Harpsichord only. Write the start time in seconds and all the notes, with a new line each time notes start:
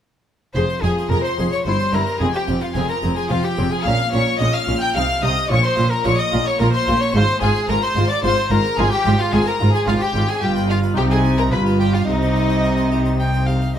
0.56 F2
0.70 C5
0.84 F2 F4
0.98 C5
1.12 F2 A#4
1.25 C5
1.40 F2 G#4
1.53 C5
1.66 G2
1.80 C5
1.93 G2 E4
2.07 C5
2.20 F2
2.34 C5
2.48 F2 F4
2.61 C5
2.75 F2 A#4
2.88 C5
3.02 F2 G#4
3.16 C5
3.29 F2 F4
3.43 C5
3.57 F2 G#4
3.70 F4
3.84 A#2
3.98 A#4
4.11 A#2 C#4
4.26 A#4
4.39 A#2 G#4
4.53 A#4
4.67 A#2 F4
4.81 A#4
4.95 C3
5.09 A4
5.23 C3 D#4
5.36 A4
5.50 A#2
5.64 A#4
5.77 A#2 C#4
5.91 A#4
6.05 A#2 G#4
6.18 A#4
6.32 A#2 F4
6.46 A#4
6.59 A#2 C#4
6.73 A#4
6.87 A#2 F4
7.01 C#4
7.14 G#2
7.28 C5
7.41 G#2 F4
7.55 C5
7.69 G#2 A#4
7.83 C5
7.97 G#2 F4
8.10 C5
8.24 G#2 F4
8.37 C5
8.50 G#2 F4
8.64 C4
8.78 G#2
8.92 C5
9.05 G#2 D4
9.19 C5
9.33 G#2 A#4
9.46 C5
9.60 G#2 F4
9.74 C5
9.87 G#2 D4
10.01 C5
10.15 G#2 F4
10.29 D4
10.42 G2
10.57 B4
10.70 D4
10.83 B4
10.97 C3
11.11 C5
11.25 D#4
11.38 C5
11.53 G2
11.67 G4
11.81 D4
11.95 G4
12.09 C3
12.22 C5
12.36 D#4
12.50 C5
12.64 A#4
12.78 C5
12.92 G4
13.05 C5
13.20 D#4
13.34 C5
13.48 G4
13.62 D#4
13.75 C3